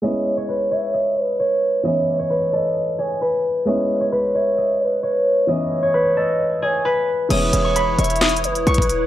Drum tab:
CC |------------------------------------------------------------------------------------------------|------------------------------------------------------------------------------------------------|------------------------------------------------------------------------------------------------|------------------------------------------------------------------------------------------------|
HH |------------------------------------------------------------------------------------------------|------------------------------------------------------------------------------------------------|------------------------------------------------------------------------------------------------|------------------------------------------------------------------------------------------------|
CP |------------------------------------------------------------------------------------------------|------------------------------------------------------------------------------------------------|------------------------------------------------------------------------------------------------|------------------------------------------------------------------------------------------------|
SD |------------------------------------------------------------------------------------------------|------------------------------------------------------------------------------------------------|------------------------------------------------------------------------------------------------|------------------------------------------------------------------------------------------------|
BD |------------------------------------------------------------------------------------------------|------------------------------------------------------------------------------------------------|------------------------------------------------------------------------------------------------|------------------------------------------------------------------------------------------------|

CC |x-----------------------------------------------------------------------------------------------|
HH |x-----------x-----------x-----------x--x--x--x--x---x---x---x-----x-----x---x---x---x-----------|
CP |------------------------------------------------x-----------------------------------------------|
SD |------------------------------------------------o-----------------------------------------------|
BD |------------------------------------------------------------------------------o-----------------|